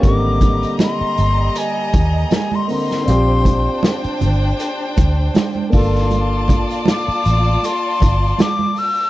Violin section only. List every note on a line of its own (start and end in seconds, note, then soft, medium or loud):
0.03 3.04 G3 medium
0.03 3.03 D#5 medium
0.03 3.04 A#5 medium
3.06 5.69 D4 medium
3.06 5.69 C5 medium
3.06 5.69 G5 medium
5.74 9.10 F4 medium
5.74 9.10 D5 medium
5.74 9.10 A5 medium